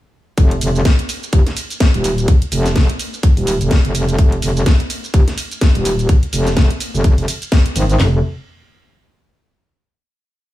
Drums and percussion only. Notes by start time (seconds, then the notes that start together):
0.38 kick, closed hi-hat, ride, shaker
0.51 closed hi-hat
0.61 open hi-hat, ride, shaker
0.76 shaker
0.85 kick, snare, closed hi-hat, ride, shaker
0.99 closed hi-hat
1.09 open hi-hat, ride, shaker
1.23 shaker
1.33 kick, closed hi-hat, ride, shaker
1.47 snare, closed hi-hat
1.57 open hi-hat, ride, shaker
1.70 closed hi-hat, shaker
1.80 kick, snare, closed hi-hat, ride, shaker
1.94 closed hi-hat
2.04 open hi-hat, ride, shaker
2.18 closed hi-hat, shaker
2.28 kick, closed hi-hat, ride, shaker
2.42 closed hi-hat
2.52 open hi-hat, ride, shaker
2.66 snare, closed hi-hat, shaker
2.76 kick, snare, closed hi-hat, ride, shaker
2.90 closed hi-hat
2.99 open hi-hat, ride, shaker
3.14 shaker
3.23 kick, closed hi-hat, ride, shaker
3.37 open hi-hat
3.47 open hi-hat, ride, shaker
3.61 closed hi-hat, shaker
3.71 kick, snare, closed hi-hat, ride, shaker
3.85 closed hi-hat
3.95 open hi-hat, ride, shaker
4.09 closed hi-hat, shaker
4.19 kick, closed hi-hat, ride, shaker
4.32 closed hi-hat
4.42 open hi-hat, ride, shaker
4.57 shaker
4.66 kick, snare, closed hi-hat, ride, shaker
4.80 closed hi-hat
4.90 open hi-hat, ride, shaker
5.04 shaker
5.14 kick, closed hi-hat, ride, shaker
5.28 snare, closed hi-hat
5.38 open hi-hat, ride, shaker
5.51 closed hi-hat, shaker
5.61 kick, snare, closed hi-hat, ride, shaker
5.75 closed hi-hat
5.85 open hi-hat, ride, shaker
5.99 closed hi-hat, shaker
6.09 kick, closed hi-hat, ride, shaker
6.23 closed hi-hat
6.33 open hi-hat, ride, shaker
6.47 snare, closed hi-hat, shaker
6.57 kick, snare, closed hi-hat, ride, shaker
6.70 closed hi-hat
6.80 open hi-hat, ride, shaker
6.95 shaker
7.04 kick, closed hi-hat, ride, shaker
7.18 open hi-hat
7.28 open hi-hat, ride, shaker
7.42 closed hi-hat, shaker
7.52 kick, snare, closed hi-hat, ride, shaker
7.66 closed hi-hat
7.76 open hi-hat, ride, shaker
7.90 closed hi-hat, shaker
8.00 snare, clap, floor tom